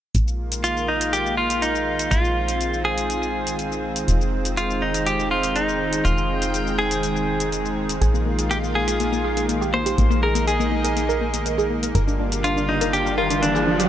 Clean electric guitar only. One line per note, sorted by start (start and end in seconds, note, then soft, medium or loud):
0.64 0.89 F4 medium
0.88 1.14 D#4 medium
1.13 1.37 G4 medium
1.37 1.63 F4 medium
1.62 2.13 D#4 medium
2.11 2.84 F4 medium
2.85 3.55 G#4 medium
4.57 4.83 F4 medium
4.82 5.07 D#4 medium
5.07 5.29 G4 medium
5.31 5.56 F4 medium
5.56 6.06 D#4 medium
6.05 6.78 F4 medium
6.79 7.48 G#4 medium
8.51 8.57 G4 medium
8.75 9.45 G#4 loud
9.74 10.22 C5 loud
10.23 10.47 A#4 medium
10.48 11.42 G#4 medium
12.44 12.70 F4 medium
12.69 12.92 D#4 medium
12.93 13.17 G4 medium
13.18 13.43 F4 medium
13.42 13.89 D4 medium